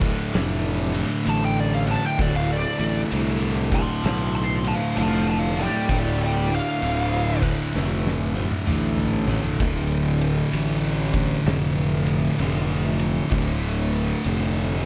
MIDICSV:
0, 0, Header, 1, 7, 480
1, 0, Start_track
1, 0, Key_signature, -1, "minor"
1, 0, Tempo, 927357
1, 1133, Time_signature, 4, 2, 24, 8
1, 7688, End_track
2, 0, Start_track
2, 0, Title_t, "Lead electric guitar"
2, 0, Program_c, 0, 29
2, 670, Note_on_c, 0, 81, 103
2, 749, Note_off_c, 0, 81, 0
2, 751, Note_on_c, 0, 79, 95
2, 808, Note_off_c, 0, 79, 0
2, 829, Note_on_c, 0, 74, 91
2, 904, Note_off_c, 0, 74, 0
2, 904, Note_on_c, 0, 77, 94
2, 940, Note_off_c, 0, 77, 0
2, 988, Note_on_c, 0, 81, 100
2, 1066, Note_off_c, 0, 81, 0
2, 1068, Note_on_c, 0, 79, 91
2, 1126, Note_off_c, 0, 79, 0
2, 1147, Note_on_c, 0, 74, 105
2, 1221, Note_off_c, 0, 74, 0
2, 1223, Note_on_c, 0, 77, 82
2, 1283, Note_off_c, 0, 77, 0
2, 1307, Note_on_c, 0, 74, 100
2, 1556, Note_off_c, 0, 74, 0
2, 1937, Note_on_c, 0, 81, 93
2, 1940, Note_on_c, 0, 84, 90
2, 2090, Note_off_c, 0, 84, 0
2, 2092, Note_off_c, 0, 81, 0
2, 2098, Note_on_c, 0, 81, 93
2, 2103, Note_on_c, 0, 84, 93
2, 2244, Note_off_c, 0, 81, 0
2, 2251, Note_on_c, 0, 81, 75
2, 2252, Note_off_c, 0, 84, 0
2, 2258, Note_on_c, 0, 84, 93
2, 2400, Note_off_c, 0, 81, 0
2, 2410, Note_off_c, 0, 84, 0
2, 2418, Note_on_c, 0, 77, 86
2, 2421, Note_on_c, 0, 81, 100
2, 2564, Note_off_c, 0, 77, 0
2, 2571, Note_off_c, 0, 81, 0
2, 2581, Note_on_c, 0, 77, 86
2, 2585, Note_on_c, 0, 81, 97
2, 2725, Note_off_c, 0, 77, 0
2, 2733, Note_off_c, 0, 81, 0
2, 2742, Note_on_c, 0, 77, 70
2, 2748, Note_on_c, 0, 81, 96
2, 2886, Note_off_c, 0, 77, 0
2, 2895, Note_off_c, 0, 81, 0
2, 2905, Note_on_c, 0, 74, 89
2, 2909, Note_on_c, 0, 79, 85
2, 3048, Note_off_c, 0, 74, 0
2, 3055, Note_off_c, 0, 79, 0
2, 3060, Note_on_c, 0, 74, 73
2, 3062, Note_on_c, 0, 79, 80
2, 3205, Note_off_c, 0, 74, 0
2, 3212, Note_off_c, 0, 79, 0
2, 3227, Note_on_c, 0, 74, 72
2, 3229, Note_on_c, 0, 79, 82
2, 3368, Note_off_c, 0, 74, 0
2, 3376, Note_off_c, 0, 79, 0
2, 3392, Note_on_c, 0, 77, 95
2, 3847, Note_off_c, 0, 77, 0
2, 7688, End_track
3, 0, Start_track
3, 0, Title_t, "Distorted electric guitar"
3, 0, Program_c, 1, 30
3, 4965, Note_on_c, 1, 38, 81
3, 4976, Note_on_c, 1, 45, 94
3, 4983, Note_on_c, 1, 50, 91
3, 5750, Note_off_c, 1, 45, 0
3, 5760, Note_off_c, 1, 50, 0
3, 5762, Note_on_c, 1, 50, 90
3, 5774, Note_on_c, 1, 45, 76
3, 5778, Note_off_c, 1, 38, 0
3, 5780, Note_on_c, 1, 38, 79
3, 6403, Note_off_c, 1, 38, 0
3, 6405, Note_on_c, 1, 38, 82
3, 6407, Note_off_c, 1, 45, 0
3, 6416, Note_on_c, 1, 45, 79
3, 6421, Note_off_c, 1, 50, 0
3, 6423, Note_on_c, 1, 50, 93
3, 6884, Note_off_c, 1, 38, 0
3, 6886, Note_off_c, 1, 45, 0
3, 6886, Note_on_c, 1, 38, 87
3, 6896, Note_on_c, 1, 45, 90
3, 6899, Note_off_c, 1, 50, 0
3, 6901, Note_on_c, 1, 50, 89
3, 7672, Note_off_c, 1, 45, 0
3, 7680, Note_off_c, 1, 50, 0
3, 7688, Note_off_c, 1, 38, 0
3, 7688, End_track
4, 0, Start_track
4, 0, Title_t, "Distorted electric guitar"
4, 0, Program_c, 2, 30
4, 0, Note_on_c, 2, 38, 101
4, 0, Note_on_c, 2, 45, 103
4, 0, Note_on_c, 2, 50, 107
4, 951, Note_off_c, 2, 45, 0
4, 965, Note_off_c, 2, 50, 0
4, 979, Note_off_c, 2, 38, 0
4, 7688, End_track
5, 0, Start_track
5, 0, Title_t, "Overdriven electric guitar"
5, 0, Program_c, 3, 29
5, 5, Note_on_c, 3, 38, 94
5, 5, Note_on_c, 3, 45, 101
5, 8, Note_on_c, 3, 50, 112
5, 170, Note_off_c, 3, 38, 0
5, 170, Note_off_c, 3, 45, 0
5, 172, Note_on_c, 3, 38, 78
5, 176, Note_off_c, 3, 50, 0
5, 176, Note_on_c, 3, 45, 86
5, 178, Note_on_c, 3, 50, 90
5, 481, Note_off_c, 3, 45, 0
5, 483, Note_off_c, 3, 38, 0
5, 485, Note_on_c, 3, 38, 90
5, 487, Note_on_c, 3, 45, 92
5, 489, Note_off_c, 3, 50, 0
5, 491, Note_on_c, 3, 50, 104
5, 649, Note_off_c, 3, 45, 0
5, 651, Note_off_c, 3, 38, 0
5, 653, Note_on_c, 3, 38, 108
5, 655, Note_on_c, 3, 45, 105
5, 656, Note_off_c, 3, 50, 0
5, 658, Note_on_c, 3, 50, 124
5, 962, Note_off_c, 3, 45, 0
5, 964, Note_off_c, 3, 38, 0
5, 966, Note_on_c, 3, 38, 98
5, 968, Note_off_c, 3, 50, 0
5, 968, Note_on_c, 3, 45, 92
5, 970, Note_on_c, 3, 50, 100
5, 1127, Note_off_c, 3, 45, 0
5, 1130, Note_off_c, 3, 38, 0
5, 1132, Note_off_c, 3, 50, 0
5, 1132, Note_on_c, 3, 38, 106
5, 1133, Note_on_c, 3, 45, 106
5, 1134, Note_on_c, 3, 50, 124
5, 1442, Note_off_c, 3, 38, 0
5, 1442, Note_off_c, 3, 45, 0
5, 1445, Note_on_c, 3, 38, 82
5, 1448, Note_off_c, 3, 50, 0
5, 1449, Note_on_c, 3, 45, 95
5, 1450, Note_on_c, 3, 50, 106
5, 1610, Note_off_c, 3, 45, 0
5, 1612, Note_off_c, 3, 38, 0
5, 1614, Note_on_c, 3, 38, 83
5, 1616, Note_off_c, 3, 50, 0
5, 1617, Note_on_c, 3, 45, 97
5, 1618, Note_on_c, 3, 50, 105
5, 1921, Note_off_c, 3, 45, 0
5, 1922, Note_off_c, 3, 38, 0
5, 1924, Note_on_c, 3, 38, 90
5, 1926, Note_off_c, 3, 50, 0
5, 1927, Note_on_c, 3, 45, 103
5, 1928, Note_on_c, 3, 50, 108
5, 2084, Note_off_c, 3, 45, 0
5, 2085, Note_off_c, 3, 38, 0
5, 2087, Note_on_c, 3, 38, 78
5, 2088, Note_off_c, 3, 50, 0
5, 2090, Note_on_c, 3, 45, 94
5, 2090, Note_on_c, 3, 50, 101
5, 2399, Note_off_c, 3, 38, 0
5, 2399, Note_off_c, 3, 45, 0
5, 2401, Note_on_c, 3, 38, 93
5, 2404, Note_off_c, 3, 50, 0
5, 2406, Note_on_c, 3, 45, 86
5, 2406, Note_on_c, 3, 50, 105
5, 2561, Note_off_c, 3, 45, 0
5, 2563, Note_off_c, 3, 38, 0
5, 2565, Note_on_c, 3, 38, 104
5, 2567, Note_off_c, 3, 50, 0
5, 2567, Note_on_c, 3, 45, 116
5, 2569, Note_on_c, 3, 50, 127
5, 2879, Note_off_c, 3, 38, 0
5, 2879, Note_off_c, 3, 45, 0
5, 2881, Note_on_c, 3, 38, 91
5, 2883, Note_off_c, 3, 50, 0
5, 2885, Note_on_c, 3, 50, 103
5, 2886, Note_on_c, 3, 45, 92
5, 3043, Note_off_c, 3, 38, 0
5, 3045, Note_off_c, 3, 45, 0
5, 3048, Note_off_c, 3, 50, 0
5, 3049, Note_on_c, 3, 38, 100
5, 3051, Note_on_c, 3, 45, 123
5, 3054, Note_on_c, 3, 50, 100
5, 3359, Note_off_c, 3, 38, 0
5, 3362, Note_off_c, 3, 45, 0
5, 3364, Note_off_c, 3, 50, 0
5, 3365, Note_on_c, 3, 38, 86
5, 3368, Note_on_c, 3, 45, 94
5, 3370, Note_on_c, 3, 50, 100
5, 3525, Note_off_c, 3, 38, 0
5, 3526, Note_off_c, 3, 45, 0
5, 3528, Note_off_c, 3, 50, 0
5, 3531, Note_on_c, 3, 38, 84
5, 3533, Note_on_c, 3, 45, 86
5, 3534, Note_on_c, 3, 50, 94
5, 3834, Note_off_c, 3, 38, 0
5, 3837, Note_off_c, 3, 45, 0
5, 3840, Note_off_c, 3, 50, 0
5, 3840, Note_on_c, 3, 38, 97
5, 3844, Note_on_c, 3, 45, 98
5, 3847, Note_on_c, 3, 50, 103
5, 4001, Note_off_c, 3, 38, 0
5, 4004, Note_off_c, 3, 45, 0
5, 4006, Note_off_c, 3, 50, 0
5, 4008, Note_on_c, 3, 38, 100
5, 4010, Note_on_c, 3, 45, 85
5, 4012, Note_on_c, 3, 50, 91
5, 4316, Note_off_c, 3, 38, 0
5, 4319, Note_off_c, 3, 45, 0
5, 4320, Note_off_c, 3, 50, 0
5, 4322, Note_on_c, 3, 38, 84
5, 4325, Note_on_c, 3, 45, 92
5, 4326, Note_on_c, 3, 50, 97
5, 4480, Note_off_c, 3, 38, 0
5, 4483, Note_off_c, 3, 45, 0
5, 4485, Note_off_c, 3, 50, 0
5, 4486, Note_on_c, 3, 38, 92
5, 4489, Note_on_c, 3, 45, 115
5, 4491, Note_on_c, 3, 50, 115
5, 4794, Note_off_c, 3, 38, 0
5, 4796, Note_off_c, 3, 45, 0
5, 4800, Note_on_c, 3, 38, 97
5, 4801, Note_off_c, 3, 50, 0
5, 4802, Note_on_c, 3, 45, 95
5, 4807, Note_on_c, 3, 50, 101
5, 4959, Note_off_c, 3, 38, 0
5, 4960, Note_off_c, 3, 45, 0
5, 4963, Note_off_c, 3, 50, 0
5, 7688, End_track
6, 0, Start_track
6, 0, Title_t, "Fingered electric bass"
6, 0, Program_c, 4, 33
6, 180, Note_on_c, 4, 29, 104
6, 533, Note_off_c, 4, 29, 0
6, 656, Note_on_c, 4, 33, 92
6, 1010, Note_off_c, 4, 33, 0
6, 1135, Note_on_c, 4, 26, 108
6, 1366, Note_off_c, 4, 26, 0
6, 1445, Note_on_c, 4, 33, 88
6, 1569, Note_off_c, 4, 33, 0
6, 1615, Note_on_c, 4, 36, 103
6, 1969, Note_off_c, 4, 36, 0
6, 2093, Note_on_c, 4, 35, 112
6, 2448, Note_off_c, 4, 35, 0
6, 2573, Note_on_c, 4, 29, 92
6, 2928, Note_off_c, 4, 29, 0
6, 3052, Note_on_c, 4, 26, 106
6, 3407, Note_off_c, 4, 26, 0
6, 3532, Note_on_c, 4, 26, 97
6, 3888, Note_off_c, 4, 26, 0
6, 4012, Note_on_c, 4, 29, 100
6, 4367, Note_off_c, 4, 29, 0
6, 4489, Note_on_c, 4, 33, 94
6, 4846, Note_off_c, 4, 33, 0
6, 4972, Note_on_c, 4, 26, 100
6, 5392, Note_off_c, 4, 26, 0
6, 5451, Note_on_c, 4, 33, 91
6, 5872, Note_off_c, 4, 33, 0
6, 5932, Note_on_c, 4, 29, 102
6, 6352, Note_off_c, 4, 29, 0
6, 6414, Note_on_c, 4, 29, 89
6, 6834, Note_off_c, 4, 29, 0
6, 6893, Note_on_c, 4, 26, 103
6, 7314, Note_off_c, 4, 26, 0
6, 7380, Note_on_c, 4, 29, 90
6, 7688, Note_off_c, 4, 29, 0
6, 7688, End_track
7, 0, Start_track
7, 0, Title_t, "Drums"
7, 7, Note_on_c, 9, 51, 71
7, 8, Note_on_c, 9, 36, 91
7, 58, Note_off_c, 9, 51, 0
7, 60, Note_off_c, 9, 36, 0
7, 174, Note_on_c, 9, 51, 98
7, 181, Note_on_c, 9, 38, 110
7, 225, Note_off_c, 9, 51, 0
7, 233, Note_off_c, 9, 38, 0
7, 488, Note_on_c, 9, 51, 76
7, 540, Note_off_c, 9, 51, 0
7, 655, Note_on_c, 9, 51, 111
7, 706, Note_off_c, 9, 51, 0
7, 967, Note_on_c, 9, 51, 82
7, 1019, Note_off_c, 9, 51, 0
7, 1133, Note_on_c, 9, 51, 99
7, 1134, Note_on_c, 9, 36, 107
7, 1185, Note_off_c, 9, 51, 0
7, 1186, Note_off_c, 9, 36, 0
7, 1446, Note_on_c, 9, 51, 90
7, 1498, Note_off_c, 9, 51, 0
7, 1612, Note_on_c, 9, 51, 105
7, 1664, Note_off_c, 9, 51, 0
7, 1925, Note_on_c, 9, 36, 94
7, 1925, Note_on_c, 9, 51, 80
7, 1976, Note_off_c, 9, 51, 0
7, 1977, Note_off_c, 9, 36, 0
7, 2093, Note_on_c, 9, 51, 103
7, 2101, Note_on_c, 9, 38, 113
7, 2145, Note_off_c, 9, 51, 0
7, 2152, Note_off_c, 9, 38, 0
7, 2404, Note_on_c, 9, 51, 77
7, 2456, Note_off_c, 9, 51, 0
7, 2568, Note_on_c, 9, 51, 108
7, 2620, Note_off_c, 9, 51, 0
7, 2883, Note_on_c, 9, 51, 80
7, 2935, Note_off_c, 9, 51, 0
7, 3049, Note_on_c, 9, 51, 106
7, 3050, Note_on_c, 9, 36, 98
7, 3101, Note_off_c, 9, 51, 0
7, 3102, Note_off_c, 9, 36, 0
7, 3364, Note_on_c, 9, 51, 75
7, 3415, Note_off_c, 9, 51, 0
7, 3530, Note_on_c, 9, 51, 102
7, 3582, Note_off_c, 9, 51, 0
7, 3843, Note_on_c, 9, 36, 83
7, 3843, Note_on_c, 9, 51, 75
7, 3895, Note_off_c, 9, 36, 0
7, 3895, Note_off_c, 9, 51, 0
7, 4020, Note_on_c, 9, 38, 63
7, 4072, Note_off_c, 9, 38, 0
7, 4175, Note_on_c, 9, 38, 62
7, 4226, Note_off_c, 9, 38, 0
7, 4325, Note_on_c, 9, 48, 78
7, 4376, Note_off_c, 9, 48, 0
7, 4406, Note_on_c, 9, 48, 79
7, 4458, Note_off_c, 9, 48, 0
7, 4489, Note_on_c, 9, 47, 92
7, 4541, Note_off_c, 9, 47, 0
7, 4645, Note_on_c, 9, 45, 88
7, 4697, Note_off_c, 9, 45, 0
7, 4801, Note_on_c, 9, 43, 108
7, 4853, Note_off_c, 9, 43, 0
7, 4887, Note_on_c, 9, 43, 90
7, 4939, Note_off_c, 9, 43, 0
7, 4970, Note_on_c, 9, 36, 118
7, 4971, Note_on_c, 9, 49, 121
7, 5021, Note_off_c, 9, 36, 0
7, 5022, Note_off_c, 9, 49, 0
7, 5286, Note_on_c, 9, 51, 90
7, 5337, Note_off_c, 9, 51, 0
7, 5450, Note_on_c, 9, 51, 122
7, 5502, Note_off_c, 9, 51, 0
7, 5765, Note_on_c, 9, 36, 98
7, 5766, Note_on_c, 9, 51, 85
7, 5817, Note_off_c, 9, 36, 0
7, 5817, Note_off_c, 9, 51, 0
7, 5933, Note_on_c, 9, 51, 110
7, 5941, Note_on_c, 9, 38, 115
7, 5985, Note_off_c, 9, 51, 0
7, 5992, Note_off_c, 9, 38, 0
7, 6244, Note_on_c, 9, 51, 74
7, 6296, Note_off_c, 9, 51, 0
7, 6412, Note_on_c, 9, 51, 120
7, 6420, Note_on_c, 9, 38, 37
7, 6464, Note_off_c, 9, 51, 0
7, 6471, Note_off_c, 9, 38, 0
7, 6725, Note_on_c, 9, 51, 84
7, 6777, Note_off_c, 9, 51, 0
7, 6892, Note_on_c, 9, 51, 96
7, 6893, Note_on_c, 9, 36, 104
7, 6944, Note_off_c, 9, 51, 0
7, 6945, Note_off_c, 9, 36, 0
7, 7207, Note_on_c, 9, 51, 80
7, 7259, Note_off_c, 9, 51, 0
7, 7372, Note_on_c, 9, 51, 110
7, 7424, Note_off_c, 9, 51, 0
7, 7688, End_track
0, 0, End_of_file